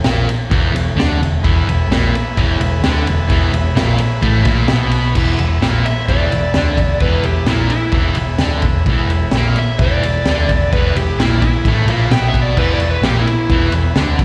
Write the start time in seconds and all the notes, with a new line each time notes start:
0.04 A#1 A#2 A#3, snare, ride
0.26 muted picked electric bass stroke, muted distorted electric guitar stroke, ride
0.50 E1 E2 E3, kick, ride
0.72 E1 E2
0.76 ride
0.96 D2 D3 D4
1.00 snare, ride
1.18 E1 E2
1.23 ride
1.41 E1 E2 G#4 B4 E5, kick, ride
1.45 E3
1.65 E1 E2, ride
1.88 A#1 A#2 A#3, snare, ride
2.12 muted picked electric bass stroke, muted distorted electric guitar stroke, ride
2.37 E1 E2 E3, kick, ride
2.58 E1 E2, ride
2.81 D2 D3 D4, snare, ride
3.06 E1 E2, ride
3.28 E1 E2 E3, kick, ride
3.52 E1 E2, ride
3.75 A#1 A#2 A#3, snare, ride
3.98 muted picked electric bass stroke, muted distorted electric guitar stroke, ride
4.22 A1 A2 A3, kick, ride
4.45 A#1 A#2 A#3, kick, ride
4.67 B1 B2 B3 E5, snare, ride
4.91 B5, ride
5.14 E1 E2 E3 G#4 B4, kick, crash
5.19 E5
5.39 E1 E2, ride
5.61 A#1 A#2 A#3, snare, ride
5.84 E5, muted picked electric bass stroke, muted distorted electric guitar stroke, ride
6.08 E1 E2 E3 D5, kick, ride
6.31 E1 E2, ride
6.54 D2 D3 D4, snare, ride
6.77 E1 E2, kick, ride
7.00 E1 E2 E3 B4, kick, ride
7.23 E1 E2 G4, ride
7.46 A#1 A#2 A#3 E4, snare, ride
7.70 E4, muted picked electric bass stroke, muted distorted electric guitar stroke, ride
7.92 E1 E2 E3, kick, ride
8.14 E1 E2, ride
8.38 D2 D3 D4, snare, ride
8.62 E1 E2, kick, ride
8.85 E1 E2 G#4 B4 E5, kick, ride
8.90 E3
9.07 E1 E2, ride
9.31 A#1 A#2, snare, ride
9.37 A#3
9.55 E5, muted picked electric bass stroke, ride
9.60 muted distorted electric guitar stroke
9.79 E1 E2 D5, kick, ride
9.83 E3
10.02 E1 E2, ride
10.25 D2 D3 D4, snare, ride
10.49 E1 E2, kick, ride
10.73 E1 E2 E3 B4, kick, ride
10.95 E1 E2 G4, ride
11.18 A#1 A#2 A#3 E4, snare, ride
11.41 E4, muted picked electric bass stroke, muted distorted electric guitar stroke, kick, ride
11.65 A1 A2 A3, kick, ride
11.86 A#1 A#2, ride
11.90 A#3
12.09 B1 B2 B3 G5, snare, ride
12.28 E5
12.34 kick, ride
12.43 D5
12.54 E1 E2 G#4 B4 E5, kick, crash
12.58 E3 B4
12.73 D5
12.79 E1 E2, ride
12.91 B4
13.01 A#1 A#2 A#3 G4, snare, ride
13.22 E4, muted picked electric bass stroke
13.27 muted distorted electric guitar stroke, ride
13.49 E1 E2 E3, kick, ride
13.71 E1 E2, ride
13.96 D2 D3 D4, snare, ride
14.18 E1 E2, kick, ride